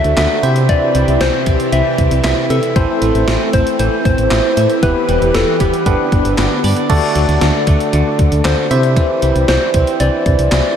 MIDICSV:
0, 0, Header, 1, 7, 480
1, 0, Start_track
1, 0, Tempo, 517241
1, 640, Time_signature, 4, 2, 24, 8
1, 9989, End_track
2, 0, Start_track
2, 0, Title_t, "Soft synth lead"
2, 0, Program_c, 0, 80
2, 0, Note_on_c, 0, 76, 105
2, 144, Note_off_c, 0, 76, 0
2, 160, Note_on_c, 0, 76, 106
2, 641, Note_on_c, 0, 74, 110
2, 655, Note_off_c, 0, 76, 0
2, 1121, Note_on_c, 0, 72, 100
2, 1134, Note_off_c, 0, 74, 0
2, 1601, Note_on_c, 0, 76, 105
2, 1615, Note_off_c, 0, 72, 0
2, 2075, Note_off_c, 0, 76, 0
2, 2081, Note_on_c, 0, 76, 102
2, 2189, Note_off_c, 0, 76, 0
2, 2321, Note_on_c, 0, 69, 98
2, 3280, Note_on_c, 0, 72, 94
2, 3294, Note_off_c, 0, 69, 0
2, 3515, Note_off_c, 0, 72, 0
2, 3521, Note_on_c, 0, 72, 98
2, 3744, Note_off_c, 0, 72, 0
2, 3760, Note_on_c, 0, 72, 105
2, 4443, Note_off_c, 0, 72, 0
2, 4480, Note_on_c, 0, 71, 102
2, 4961, Note_on_c, 0, 69, 93
2, 4975, Note_off_c, 0, 71, 0
2, 5196, Note_off_c, 0, 69, 0
2, 5202, Note_on_c, 0, 67, 82
2, 6124, Note_off_c, 0, 67, 0
2, 7843, Note_on_c, 0, 72, 90
2, 8764, Note_off_c, 0, 72, 0
2, 8802, Note_on_c, 0, 72, 92
2, 9281, Note_on_c, 0, 74, 97
2, 9295, Note_off_c, 0, 72, 0
2, 9989, Note_off_c, 0, 74, 0
2, 9989, End_track
3, 0, Start_track
3, 0, Title_t, "Tine electric piano"
3, 0, Program_c, 1, 4
3, 0, Note_on_c, 1, 57, 69
3, 0, Note_on_c, 1, 62, 60
3, 0, Note_on_c, 1, 66, 61
3, 0, Note_on_c, 1, 69, 73
3, 367, Note_off_c, 1, 57, 0
3, 367, Note_off_c, 1, 62, 0
3, 367, Note_off_c, 1, 66, 0
3, 367, Note_off_c, 1, 69, 0
3, 401, Note_on_c, 1, 60, 65
3, 401, Note_on_c, 1, 64, 62
3, 401, Note_on_c, 1, 67, 60
3, 401, Note_on_c, 1, 72, 70
3, 2283, Note_off_c, 1, 60, 0
3, 2283, Note_off_c, 1, 64, 0
3, 2283, Note_off_c, 1, 67, 0
3, 2283, Note_off_c, 1, 72, 0
3, 2559, Note_on_c, 1, 60, 70
3, 2559, Note_on_c, 1, 69, 61
3, 2560, Note_on_c, 1, 64, 63
3, 2560, Note_on_c, 1, 72, 74
3, 4443, Note_off_c, 1, 60, 0
3, 4443, Note_off_c, 1, 64, 0
3, 4443, Note_off_c, 1, 69, 0
3, 4443, Note_off_c, 1, 72, 0
3, 4480, Note_on_c, 1, 59, 68
3, 4480, Note_on_c, 1, 64, 64
3, 4480, Note_on_c, 1, 67, 63
3, 4480, Note_on_c, 1, 71, 75
3, 5421, Note_off_c, 1, 59, 0
3, 5421, Note_off_c, 1, 64, 0
3, 5421, Note_off_c, 1, 67, 0
3, 5421, Note_off_c, 1, 71, 0
3, 5440, Note_on_c, 1, 59, 66
3, 5440, Note_on_c, 1, 62, 61
3, 5440, Note_on_c, 1, 67, 64
3, 5440, Note_on_c, 1, 71, 73
3, 6381, Note_off_c, 1, 59, 0
3, 6381, Note_off_c, 1, 62, 0
3, 6381, Note_off_c, 1, 67, 0
3, 6381, Note_off_c, 1, 71, 0
3, 6399, Note_on_c, 1, 57, 78
3, 6399, Note_on_c, 1, 62, 76
3, 6399, Note_on_c, 1, 66, 72
3, 6399, Note_on_c, 1, 69, 73
3, 6399, Note_on_c, 1, 74, 88
3, 8046, Note_off_c, 1, 57, 0
3, 8046, Note_off_c, 1, 62, 0
3, 8046, Note_off_c, 1, 66, 0
3, 8046, Note_off_c, 1, 69, 0
3, 8046, Note_off_c, 1, 74, 0
3, 8080, Note_on_c, 1, 60, 67
3, 8080, Note_on_c, 1, 64, 62
3, 8080, Note_on_c, 1, 67, 62
3, 8080, Note_on_c, 1, 72, 61
3, 8080, Note_on_c, 1, 76, 76
3, 9963, Note_off_c, 1, 60, 0
3, 9963, Note_off_c, 1, 64, 0
3, 9963, Note_off_c, 1, 67, 0
3, 9963, Note_off_c, 1, 72, 0
3, 9963, Note_off_c, 1, 76, 0
3, 9989, End_track
4, 0, Start_track
4, 0, Title_t, "String machine"
4, 0, Program_c, 2, 50
4, 0, Note_on_c, 2, 50, 86
4, 0, Note_on_c, 2, 62, 77
4, 0, Note_on_c, 2, 66, 76
4, 0, Note_on_c, 2, 69, 96
4, 383, Note_off_c, 2, 50, 0
4, 383, Note_off_c, 2, 62, 0
4, 383, Note_off_c, 2, 66, 0
4, 383, Note_off_c, 2, 69, 0
4, 399, Note_on_c, 2, 48, 85
4, 399, Note_on_c, 2, 60, 79
4, 399, Note_on_c, 2, 64, 77
4, 400, Note_on_c, 2, 67, 92
4, 2538, Note_off_c, 2, 48, 0
4, 2538, Note_off_c, 2, 60, 0
4, 2538, Note_off_c, 2, 67, 0
4, 2559, Note_on_c, 2, 57, 84
4, 2560, Note_on_c, 2, 60, 78
4, 4460, Note_off_c, 2, 57, 0
4, 4461, Note_off_c, 2, 60, 0
4, 4480, Note_on_c, 2, 67, 76
4, 4480, Note_on_c, 2, 71, 89
4, 4481, Note_on_c, 2, 52, 82
4, 5402, Note_off_c, 2, 64, 0
4, 5431, Note_off_c, 2, 52, 0
4, 5431, Note_off_c, 2, 71, 0
4, 5440, Note_on_c, 2, 59, 78
4, 5440, Note_on_c, 2, 62, 70
4, 6381, Note_off_c, 2, 67, 0
4, 6391, Note_off_c, 2, 59, 0
4, 6391, Note_off_c, 2, 62, 0
4, 9989, End_track
5, 0, Start_track
5, 0, Title_t, "Qanun"
5, 0, Program_c, 3, 107
5, 0, Note_on_c, 3, 54, 87
5, 0, Note_on_c, 3, 57, 79
5, 0, Note_on_c, 3, 62, 82
5, 150, Note_off_c, 3, 54, 0
5, 161, Note_on_c, 3, 54, 80
5, 401, Note_on_c, 3, 76, 89
5, 446, Note_off_c, 3, 54, 0
5, 607, Note_off_c, 3, 57, 0
5, 641, Note_on_c, 3, 52, 96
5, 826, Note_off_c, 3, 62, 0
5, 881, Note_on_c, 3, 55, 81
5, 1110, Note_off_c, 3, 52, 0
5, 1121, Note_on_c, 3, 52, 84
5, 1254, Note_off_c, 3, 76, 0
5, 1361, Note_on_c, 3, 60, 82
5, 1590, Note_off_c, 3, 52, 0
5, 1601, Note_on_c, 3, 52, 89
5, 2069, Note_off_c, 3, 52, 0
5, 2080, Note_on_c, 3, 52, 82
5, 2319, Note_on_c, 3, 76, 88
5, 2549, Note_off_c, 3, 52, 0
5, 2560, Note_on_c, 3, 52, 90
5, 2606, Note_off_c, 3, 55, 0
5, 2800, Note_on_c, 3, 57, 83
5, 2845, Note_off_c, 3, 60, 0
5, 3029, Note_off_c, 3, 52, 0
5, 3040, Note_on_c, 3, 52, 86
5, 3172, Note_off_c, 3, 76, 0
5, 3280, Note_on_c, 3, 60, 81
5, 3509, Note_off_c, 3, 52, 0
5, 3520, Note_on_c, 3, 52, 89
5, 3989, Note_off_c, 3, 52, 0
5, 4000, Note_on_c, 3, 52, 81
5, 4240, Note_on_c, 3, 76, 87
5, 4447, Note_off_c, 3, 57, 0
5, 4469, Note_off_c, 3, 52, 0
5, 4480, Note_on_c, 3, 52, 95
5, 4721, Note_on_c, 3, 55, 84
5, 4764, Note_off_c, 3, 60, 0
5, 4950, Note_off_c, 3, 52, 0
5, 4961, Note_on_c, 3, 52, 86
5, 5093, Note_off_c, 3, 76, 0
5, 5200, Note_on_c, 3, 59, 79
5, 5441, Note_on_c, 3, 50, 86
5, 5486, Note_off_c, 3, 52, 0
5, 5486, Note_off_c, 3, 55, 0
5, 5910, Note_off_c, 3, 50, 0
5, 5921, Note_on_c, 3, 50, 81
5, 6161, Note_on_c, 3, 74, 90
5, 6390, Note_off_c, 3, 50, 0
5, 6401, Note_on_c, 3, 50, 92
5, 6640, Note_on_c, 3, 54, 83
5, 6737, Note_off_c, 3, 59, 0
5, 6869, Note_off_c, 3, 50, 0
5, 6880, Note_on_c, 3, 50, 87
5, 6926, Note_off_c, 3, 54, 0
5, 7075, Note_off_c, 3, 74, 0
5, 7120, Note_on_c, 3, 57, 82
5, 7349, Note_off_c, 3, 50, 0
5, 7361, Note_on_c, 3, 50, 88
5, 7829, Note_off_c, 3, 50, 0
5, 7840, Note_on_c, 3, 50, 79
5, 8080, Note_on_c, 3, 76, 90
5, 8127, Note_off_c, 3, 50, 0
5, 8320, Note_on_c, 3, 52, 96
5, 8560, Note_on_c, 3, 55, 80
5, 8768, Note_off_c, 3, 57, 0
5, 8789, Note_off_c, 3, 52, 0
5, 8800, Note_on_c, 3, 52, 89
5, 8933, Note_off_c, 3, 76, 0
5, 9040, Note_on_c, 3, 60, 83
5, 9269, Note_off_c, 3, 52, 0
5, 9280, Note_on_c, 3, 52, 92
5, 9749, Note_off_c, 3, 52, 0
5, 9760, Note_on_c, 3, 52, 83
5, 9989, Note_off_c, 3, 52, 0
5, 9989, Note_off_c, 3, 55, 0
5, 9989, Note_off_c, 3, 60, 0
5, 9989, End_track
6, 0, Start_track
6, 0, Title_t, "FM bass"
6, 0, Program_c, 4, 39
6, 40, Note_on_c, 4, 38, 98
6, 127, Note_off_c, 4, 38, 0
6, 160, Note_on_c, 4, 38, 104
6, 247, Note_off_c, 4, 38, 0
6, 399, Note_on_c, 4, 48, 97
6, 662, Note_off_c, 4, 48, 0
6, 880, Note_on_c, 4, 36, 98
6, 968, Note_off_c, 4, 36, 0
6, 1000, Note_on_c, 4, 36, 95
6, 1088, Note_off_c, 4, 36, 0
6, 1120, Note_on_c, 4, 36, 99
6, 1207, Note_off_c, 4, 36, 0
6, 1362, Note_on_c, 4, 36, 93
6, 1448, Note_off_c, 4, 36, 0
6, 1600, Note_on_c, 4, 36, 106
6, 1687, Note_off_c, 4, 36, 0
6, 1842, Note_on_c, 4, 36, 112
6, 1928, Note_off_c, 4, 36, 0
6, 1960, Note_on_c, 4, 36, 95
6, 2047, Note_off_c, 4, 36, 0
6, 2080, Note_on_c, 4, 36, 102
6, 2167, Note_off_c, 4, 36, 0
6, 2320, Note_on_c, 4, 48, 101
6, 2408, Note_off_c, 4, 48, 0
6, 2560, Note_on_c, 4, 33, 108
6, 2648, Note_off_c, 4, 33, 0
6, 2800, Note_on_c, 4, 33, 101
6, 2887, Note_off_c, 4, 33, 0
6, 2920, Note_on_c, 4, 33, 101
6, 3007, Note_off_c, 4, 33, 0
6, 3040, Note_on_c, 4, 33, 107
6, 3127, Note_off_c, 4, 33, 0
6, 3282, Note_on_c, 4, 33, 98
6, 3368, Note_off_c, 4, 33, 0
6, 3521, Note_on_c, 4, 33, 110
6, 3608, Note_off_c, 4, 33, 0
6, 3762, Note_on_c, 4, 33, 103
6, 3848, Note_off_c, 4, 33, 0
6, 3880, Note_on_c, 4, 33, 103
6, 3967, Note_off_c, 4, 33, 0
6, 4000, Note_on_c, 4, 33, 106
6, 4087, Note_off_c, 4, 33, 0
6, 4240, Note_on_c, 4, 45, 104
6, 4328, Note_off_c, 4, 45, 0
6, 4480, Note_on_c, 4, 28, 111
6, 4567, Note_off_c, 4, 28, 0
6, 4720, Note_on_c, 4, 28, 102
6, 4807, Note_off_c, 4, 28, 0
6, 4839, Note_on_c, 4, 28, 100
6, 4927, Note_off_c, 4, 28, 0
6, 4960, Note_on_c, 4, 28, 108
6, 5047, Note_off_c, 4, 28, 0
6, 5202, Note_on_c, 4, 28, 101
6, 5288, Note_off_c, 4, 28, 0
6, 5439, Note_on_c, 4, 31, 112
6, 5527, Note_off_c, 4, 31, 0
6, 5682, Note_on_c, 4, 31, 100
6, 5768, Note_off_c, 4, 31, 0
6, 5800, Note_on_c, 4, 31, 96
6, 5888, Note_off_c, 4, 31, 0
6, 5921, Note_on_c, 4, 31, 102
6, 6008, Note_off_c, 4, 31, 0
6, 6161, Note_on_c, 4, 43, 104
6, 6248, Note_off_c, 4, 43, 0
6, 6400, Note_on_c, 4, 38, 117
6, 6488, Note_off_c, 4, 38, 0
6, 6640, Note_on_c, 4, 38, 101
6, 6727, Note_off_c, 4, 38, 0
6, 6760, Note_on_c, 4, 38, 97
6, 6847, Note_off_c, 4, 38, 0
6, 6880, Note_on_c, 4, 38, 113
6, 6967, Note_off_c, 4, 38, 0
6, 7121, Note_on_c, 4, 38, 105
6, 7208, Note_off_c, 4, 38, 0
6, 7361, Note_on_c, 4, 38, 111
6, 7448, Note_off_c, 4, 38, 0
6, 7602, Note_on_c, 4, 38, 101
6, 7688, Note_off_c, 4, 38, 0
6, 7721, Note_on_c, 4, 38, 96
6, 7808, Note_off_c, 4, 38, 0
6, 7841, Note_on_c, 4, 38, 104
6, 7928, Note_off_c, 4, 38, 0
6, 8081, Note_on_c, 4, 48, 103
6, 8343, Note_off_c, 4, 48, 0
6, 8561, Note_on_c, 4, 36, 100
6, 8648, Note_off_c, 4, 36, 0
6, 8681, Note_on_c, 4, 36, 99
6, 8768, Note_off_c, 4, 36, 0
6, 8800, Note_on_c, 4, 36, 95
6, 8887, Note_off_c, 4, 36, 0
6, 9041, Note_on_c, 4, 36, 97
6, 9128, Note_off_c, 4, 36, 0
6, 9281, Note_on_c, 4, 36, 109
6, 9368, Note_off_c, 4, 36, 0
6, 9522, Note_on_c, 4, 36, 109
6, 9608, Note_off_c, 4, 36, 0
6, 9641, Note_on_c, 4, 36, 97
6, 9728, Note_off_c, 4, 36, 0
6, 9761, Note_on_c, 4, 36, 104
6, 9848, Note_off_c, 4, 36, 0
6, 9989, End_track
7, 0, Start_track
7, 0, Title_t, "Drums"
7, 41, Note_on_c, 9, 42, 54
7, 134, Note_off_c, 9, 42, 0
7, 158, Note_on_c, 9, 42, 62
7, 160, Note_on_c, 9, 38, 115
7, 160, Note_on_c, 9, 39, 94
7, 251, Note_off_c, 9, 42, 0
7, 253, Note_off_c, 9, 38, 0
7, 253, Note_off_c, 9, 39, 0
7, 403, Note_on_c, 9, 42, 80
7, 496, Note_off_c, 9, 42, 0
7, 518, Note_on_c, 9, 42, 55
7, 611, Note_off_c, 9, 42, 0
7, 640, Note_on_c, 9, 36, 116
7, 641, Note_on_c, 9, 42, 65
7, 733, Note_off_c, 9, 36, 0
7, 734, Note_off_c, 9, 42, 0
7, 879, Note_on_c, 9, 42, 75
7, 972, Note_off_c, 9, 42, 0
7, 1002, Note_on_c, 9, 42, 52
7, 1095, Note_off_c, 9, 42, 0
7, 1120, Note_on_c, 9, 38, 122
7, 1120, Note_on_c, 9, 42, 81
7, 1213, Note_off_c, 9, 38, 0
7, 1213, Note_off_c, 9, 42, 0
7, 1358, Note_on_c, 9, 42, 84
7, 1362, Note_on_c, 9, 36, 97
7, 1451, Note_off_c, 9, 42, 0
7, 1454, Note_off_c, 9, 36, 0
7, 1482, Note_on_c, 9, 42, 52
7, 1575, Note_off_c, 9, 42, 0
7, 1601, Note_on_c, 9, 42, 85
7, 1694, Note_off_c, 9, 42, 0
7, 1841, Note_on_c, 9, 42, 81
7, 1842, Note_on_c, 9, 36, 94
7, 1934, Note_off_c, 9, 42, 0
7, 1935, Note_off_c, 9, 36, 0
7, 1960, Note_on_c, 9, 42, 54
7, 2053, Note_off_c, 9, 42, 0
7, 2078, Note_on_c, 9, 42, 63
7, 2080, Note_on_c, 9, 38, 115
7, 2080, Note_on_c, 9, 39, 93
7, 2171, Note_off_c, 9, 42, 0
7, 2173, Note_off_c, 9, 38, 0
7, 2173, Note_off_c, 9, 39, 0
7, 2322, Note_on_c, 9, 42, 81
7, 2415, Note_off_c, 9, 42, 0
7, 2438, Note_on_c, 9, 42, 57
7, 2531, Note_off_c, 9, 42, 0
7, 2560, Note_on_c, 9, 36, 119
7, 2561, Note_on_c, 9, 42, 67
7, 2653, Note_off_c, 9, 36, 0
7, 2654, Note_off_c, 9, 42, 0
7, 2800, Note_on_c, 9, 42, 76
7, 2893, Note_off_c, 9, 42, 0
7, 2923, Note_on_c, 9, 42, 50
7, 3016, Note_off_c, 9, 42, 0
7, 3041, Note_on_c, 9, 38, 126
7, 3041, Note_on_c, 9, 42, 81
7, 3133, Note_off_c, 9, 42, 0
7, 3134, Note_off_c, 9, 38, 0
7, 3279, Note_on_c, 9, 42, 84
7, 3282, Note_on_c, 9, 36, 96
7, 3371, Note_off_c, 9, 42, 0
7, 3374, Note_off_c, 9, 36, 0
7, 3403, Note_on_c, 9, 42, 52
7, 3495, Note_off_c, 9, 42, 0
7, 3521, Note_on_c, 9, 42, 89
7, 3614, Note_off_c, 9, 42, 0
7, 3761, Note_on_c, 9, 42, 80
7, 3762, Note_on_c, 9, 36, 97
7, 3854, Note_off_c, 9, 42, 0
7, 3855, Note_off_c, 9, 36, 0
7, 3880, Note_on_c, 9, 42, 52
7, 3973, Note_off_c, 9, 42, 0
7, 3997, Note_on_c, 9, 42, 64
7, 3999, Note_on_c, 9, 38, 114
7, 3999, Note_on_c, 9, 39, 99
7, 4090, Note_off_c, 9, 42, 0
7, 4092, Note_off_c, 9, 38, 0
7, 4092, Note_off_c, 9, 39, 0
7, 4242, Note_on_c, 9, 42, 83
7, 4335, Note_off_c, 9, 42, 0
7, 4358, Note_on_c, 9, 42, 55
7, 4450, Note_off_c, 9, 42, 0
7, 4480, Note_on_c, 9, 36, 123
7, 4481, Note_on_c, 9, 42, 68
7, 4573, Note_off_c, 9, 36, 0
7, 4573, Note_off_c, 9, 42, 0
7, 4720, Note_on_c, 9, 42, 74
7, 4813, Note_off_c, 9, 42, 0
7, 4843, Note_on_c, 9, 42, 52
7, 4936, Note_off_c, 9, 42, 0
7, 4960, Note_on_c, 9, 38, 124
7, 4960, Note_on_c, 9, 42, 83
7, 5053, Note_off_c, 9, 38, 0
7, 5053, Note_off_c, 9, 42, 0
7, 5198, Note_on_c, 9, 42, 85
7, 5202, Note_on_c, 9, 36, 96
7, 5291, Note_off_c, 9, 42, 0
7, 5294, Note_off_c, 9, 36, 0
7, 5322, Note_on_c, 9, 42, 51
7, 5415, Note_off_c, 9, 42, 0
7, 5439, Note_on_c, 9, 36, 93
7, 5440, Note_on_c, 9, 42, 88
7, 5532, Note_off_c, 9, 36, 0
7, 5533, Note_off_c, 9, 42, 0
7, 5681, Note_on_c, 9, 42, 79
7, 5682, Note_on_c, 9, 36, 97
7, 5774, Note_off_c, 9, 36, 0
7, 5774, Note_off_c, 9, 42, 0
7, 5800, Note_on_c, 9, 42, 52
7, 5893, Note_off_c, 9, 42, 0
7, 5918, Note_on_c, 9, 42, 63
7, 5920, Note_on_c, 9, 38, 119
7, 5920, Note_on_c, 9, 39, 96
7, 6011, Note_off_c, 9, 42, 0
7, 6013, Note_off_c, 9, 38, 0
7, 6013, Note_off_c, 9, 39, 0
7, 6162, Note_on_c, 9, 46, 84
7, 6255, Note_off_c, 9, 46, 0
7, 6278, Note_on_c, 9, 42, 56
7, 6370, Note_off_c, 9, 42, 0
7, 6400, Note_on_c, 9, 36, 125
7, 6400, Note_on_c, 9, 49, 102
7, 6401, Note_on_c, 9, 42, 66
7, 6493, Note_off_c, 9, 36, 0
7, 6493, Note_off_c, 9, 42, 0
7, 6493, Note_off_c, 9, 49, 0
7, 6639, Note_on_c, 9, 42, 74
7, 6732, Note_off_c, 9, 42, 0
7, 6763, Note_on_c, 9, 42, 53
7, 6855, Note_off_c, 9, 42, 0
7, 6880, Note_on_c, 9, 38, 126
7, 6880, Note_on_c, 9, 42, 85
7, 6973, Note_off_c, 9, 38, 0
7, 6973, Note_off_c, 9, 42, 0
7, 7118, Note_on_c, 9, 42, 88
7, 7121, Note_on_c, 9, 36, 100
7, 7211, Note_off_c, 9, 42, 0
7, 7214, Note_off_c, 9, 36, 0
7, 7242, Note_on_c, 9, 42, 51
7, 7335, Note_off_c, 9, 42, 0
7, 7360, Note_on_c, 9, 42, 86
7, 7453, Note_off_c, 9, 42, 0
7, 7600, Note_on_c, 9, 42, 83
7, 7602, Note_on_c, 9, 36, 95
7, 7693, Note_off_c, 9, 42, 0
7, 7694, Note_off_c, 9, 36, 0
7, 7720, Note_on_c, 9, 42, 54
7, 7813, Note_off_c, 9, 42, 0
7, 7838, Note_on_c, 9, 42, 65
7, 7840, Note_on_c, 9, 38, 120
7, 7840, Note_on_c, 9, 39, 98
7, 7930, Note_off_c, 9, 42, 0
7, 7933, Note_off_c, 9, 38, 0
7, 7933, Note_off_c, 9, 39, 0
7, 8082, Note_on_c, 9, 42, 82
7, 8175, Note_off_c, 9, 42, 0
7, 8197, Note_on_c, 9, 42, 56
7, 8290, Note_off_c, 9, 42, 0
7, 8319, Note_on_c, 9, 42, 66
7, 8320, Note_on_c, 9, 36, 124
7, 8412, Note_off_c, 9, 42, 0
7, 8413, Note_off_c, 9, 36, 0
7, 8559, Note_on_c, 9, 42, 77
7, 8652, Note_off_c, 9, 42, 0
7, 8682, Note_on_c, 9, 42, 50
7, 8775, Note_off_c, 9, 42, 0
7, 8800, Note_on_c, 9, 38, 127
7, 8800, Note_on_c, 9, 42, 83
7, 8893, Note_off_c, 9, 38, 0
7, 8893, Note_off_c, 9, 42, 0
7, 9038, Note_on_c, 9, 42, 87
7, 9041, Note_on_c, 9, 36, 100
7, 9131, Note_off_c, 9, 42, 0
7, 9134, Note_off_c, 9, 36, 0
7, 9162, Note_on_c, 9, 42, 50
7, 9255, Note_off_c, 9, 42, 0
7, 9280, Note_on_c, 9, 42, 89
7, 9373, Note_off_c, 9, 42, 0
7, 9521, Note_on_c, 9, 36, 100
7, 9521, Note_on_c, 9, 42, 80
7, 9613, Note_off_c, 9, 42, 0
7, 9614, Note_off_c, 9, 36, 0
7, 9640, Note_on_c, 9, 42, 54
7, 9733, Note_off_c, 9, 42, 0
7, 9758, Note_on_c, 9, 42, 65
7, 9760, Note_on_c, 9, 38, 117
7, 9760, Note_on_c, 9, 39, 98
7, 9850, Note_off_c, 9, 42, 0
7, 9853, Note_off_c, 9, 38, 0
7, 9853, Note_off_c, 9, 39, 0
7, 9989, End_track
0, 0, End_of_file